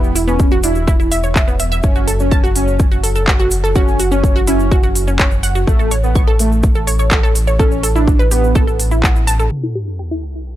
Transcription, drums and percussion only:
0.04 cabasa
0.16 open hi-hat, cabasa
0.28 cabasa
0.39 kick, cabasa
0.51 cabasa
0.63 open hi-hat, cabasa
0.75 cabasa
0.88 kick, cabasa
1.00 cabasa
1.12 open hi-hat, cabasa
1.23 cabasa
1.36 kick, clap, cabasa
1.48 cabasa
1.59 open hi-hat, cabasa
1.72 cabasa
1.83 kick, cabasa
1.96 cabasa
2.08 open hi-hat, cabasa
2.20 cabasa
2.32 kick, cabasa
2.44 cabasa
2.56 open hi-hat, cabasa
2.68 cabasa
2.80 kick, cabasa
2.92 cabasa
3.04 open hi-hat, cabasa
3.15 cabasa
3.28 kick, clap, cabasa
3.40 cabasa
3.51 open hi-hat, cabasa
3.65 cabasa
3.75 kick, cabasa
3.88 cabasa
3.99 open hi-hat, cabasa
4.12 cabasa
4.24 kick, cabasa
4.36 cabasa
4.47 open hi-hat, cabasa
4.60 cabasa
4.72 kick, cabasa
4.83 cabasa
4.95 open hi-hat, cabasa
5.08 cabasa
5.19 kick, clap, cabasa
5.31 cabasa
5.43 open hi-hat, cabasa
5.55 cabasa
5.67 kick, cabasa
5.79 cabasa
5.91 open hi-hat, cabasa
6.03 cabasa
6.15 kick, cabasa
6.27 cabasa
6.39 open hi-hat, cabasa
6.52 cabasa
6.63 kick, cabasa
6.75 cabasa
6.87 open hi-hat, cabasa
6.99 cabasa
7.11 kick, clap, cabasa
7.24 cabasa
7.35 open hi-hat, cabasa
7.47 cabasa
7.60 kick, cabasa
7.72 cabasa
7.83 open hi-hat, cabasa
7.96 cabasa
8.08 kick, cabasa
8.20 cabasa
8.31 open hi-hat, cabasa
8.44 cabasa
8.55 kick, cabasa
8.68 cabasa
8.80 open hi-hat, cabasa
8.91 cabasa
9.04 kick, clap, cabasa
9.16 cabasa
9.27 open hi-hat, cabasa
9.40 cabasa
9.51 cabasa
10.48 cabasa

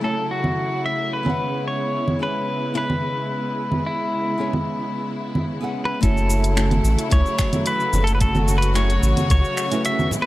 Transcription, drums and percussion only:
0.44 low conga
1.26 low conga
2.08 low conga
2.90 low conga
3.72 low conga
4.53 low conga
5.35 low conga
6.03 kick, closed hi-hat, cabasa
6.17 cabasa
6.30 cabasa
6.44 closed hi-hat, cabasa
6.57 finger snap, closed hi-hat, cabasa
6.71 closed hi-hat, low conga, cabasa
6.85 cabasa
6.99 closed hi-hat, cabasa
7.11 kick, closed hi-hat, cabasa
7.26 cabasa
7.39 finger snap, kick, cabasa
7.53 closed hi-hat, low conga, cabasa
7.66 closed hi-hat, cabasa
7.80 cabasa
7.93 high conga, low conga, cabasa
8.07 closed hi-hat, cabasa
8.21 kick, closed hi-hat, cabasa
8.35 low conga, cabasa
8.48 cabasa
8.62 closed hi-hat, cabasa
8.75 finger snap, closed hi-hat, cabasa
8.90 closed hi-hat, cabasa
9.03 cabasa
9.17 closed hi-hat, low conga, cabasa
9.30 kick, closed hi-hat, cabasa
9.45 cabasa
9.57 finger snap, cabasa
9.72 closed hi-hat, cabasa
9.85 closed hi-hat, cabasa
9.99 low conga, cabasa
10.11 low conga, cabasa

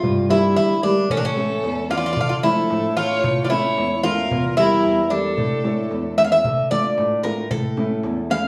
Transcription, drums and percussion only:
0.03 darbuka dum
0.30 darbuka tek
0.56 darbuka tek
0.69 darbuka tek
0.83 darbuka tek
0.97 darbuka tek
1.10 darbuka dum
1.23 darbuka tek
1.37 darbuka tek
1.63 darbuka tek
1.77 darbuka tek
1.90 darbuka tek
2.04 darbuka tek
2.17 darbuka dum
2.44 darbuka tek
2.57 darbuka tek
2.70 darbuka tek
2.97 darbuka tek
3.24 darbuka dum
3.51 darbuka tek
3.64 darbuka tek
3.78 darbuka tek
3.91 darbuka tek
4.04 darbuka tek
4.18 darbuka tek
4.31 darbuka dum
4.58 darbuka tek
4.71 darbuka tek
4.84 darbuka tek
4.97 darbuka tek
5.11 darbuka tek
5.24 darbuka tek
5.38 darbuka dum
5.64 darbuka tek
5.91 darbuka tek
6.18 darbuka tek
6.31 darbuka tek
6.44 darbuka dum
6.71 darbuka tek
6.98 darbuka tek
7.11 darbuka tek
7.25 darbuka tek
7.38 darbuka tek
7.51 darbuka dum
7.77 darbuka tek
7.90 darbuka tek
8.03 darbuka tek
8.17 darbuka tek
8.30 darbuka tek
8.44 darbuka tek

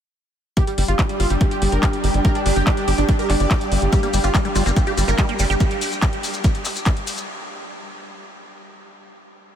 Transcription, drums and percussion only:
0.57 kick, closed hi-hat
0.67 closed hi-hat
0.78 open hi-hat
0.88 closed hi-hat
0.99 kick, clap, closed hi-hat
1.09 closed hi-hat
1.20 open hi-hat
1.30 closed hi-hat
1.41 kick, closed hi-hat
1.51 closed hi-hat
1.62 open hi-hat
1.72 closed hi-hat
1.83 kick, clap, closed hi-hat
1.93 closed hi-hat
2.04 open hi-hat
2.14 closed hi-hat
2.25 kick, closed hi-hat
2.35 closed hi-hat
2.46 open hi-hat
2.56 closed hi-hat
2.67 kick, clap, closed hi-hat
2.77 closed hi-hat
2.88 open hi-hat
2.98 closed hi-hat
3.09 kick, closed hi-hat
3.19 closed hi-hat
3.30 clap, open hi-hat
3.40 closed hi-hat
3.51 kick, clap, closed hi-hat
3.61 closed hi-hat
3.72 open hi-hat
3.82 closed hi-hat
3.93 kick, closed hi-hat, maracas
4.03 closed hi-hat
4.13 open hi-hat, maracas
4.24 closed hi-hat, maracas
4.35 kick, clap, closed hi-hat, maracas
4.45 closed hi-hat
4.55 open hi-hat, maracas
4.66 closed hi-hat, maracas
4.76 kick, closed hi-hat, maracas
4.87 closed hi-hat
4.97 open hi-hat, maracas
5.08 closed hi-hat, maracas
5.18 kick, clap, closed hi-hat, maracas
5.29 closed hi-hat
5.39 open hi-hat, maracas
5.50 closed hi-hat, maracas
5.60 kick, closed hi-hat, maracas
5.71 closed hi-hat
5.81 open hi-hat, maracas
5.92 closed hi-hat, maracas
6.02 kick, clap, closed hi-hat, maracas
6.13 closed hi-hat
6.23 open hi-hat, maracas
6.34 closed hi-hat, maracas
6.44 kick, closed hi-hat, maracas
6.55 closed hi-hat
6.65 clap, open hi-hat, maracas
6.76 closed hi-hat, maracas
6.86 kick, clap, closed hi-hat, maracas
6.97 closed hi-hat
7.07 open hi-hat, maracas
7.18 closed hi-hat, maracas

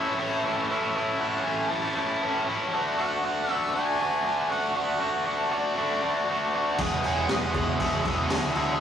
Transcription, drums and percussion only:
6.78 kick, crash
7.04 crash
7.29 snare, crash
7.54 kick, crash
7.80 kick, crash
8.05 kick, crash
8.30 snare, crash
8.55 crash

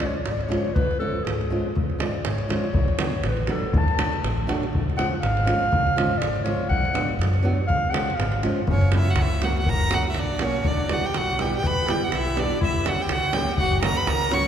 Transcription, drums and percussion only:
0.00 davul high
0.26 davul high
0.41 davul high
0.52 davul high
0.76 davul low
0.91 davul high
1.27 davul high
1.41 davul high
1.76 davul low
1.90 davul high
2.00 davul high
2.25 davul high
2.38 davul high
2.50 davul high
2.74 davul low
2.88 davul high
2.99 davul high
3.24 davul high
3.37 davul high
3.47 davul high
3.73 davul low
3.88 davul high
3.99 davul high
4.13 davul high
4.24 davul high
4.49 davul high
4.63 davul high
4.75 davul low
4.90 davul high
4.99 davul high
5.23 davul high
5.37 davul high
5.47 davul high
5.73 davul low
5.87 davul high
5.98 davul high
6.22 davul high
6.36 davul high
6.46 davul high
6.71 davul low
6.85 davul high
6.95 davul high
7.21 davul high
7.34 davul high
7.70 davul low
7.94 davul high
8.10 davul high
8.20 davul high
8.32 davul high
8.43 davul high
8.68 davul low
8.81 davul high
8.92 davul high
9.16 davul high
9.42 davul high
9.66 davul low
9.80 davul high
9.91 davul high
10.14 davul high
10.39 davul high
10.64 davul low
10.77 davul high
10.89 davul high
11.14 davul high
11.39 davul high
11.64 davul low
11.88 davul high
12.01 davul high
12.12 davul high
12.26 davul high
12.37 davul high
12.50 davul high
12.62 davul low
12.75 davul high
12.86 davul high
13.09 davul high
13.33 davul high
13.58 davul low
13.72 davul high
13.83 davul high
14.07 davul high
14.31 davul high

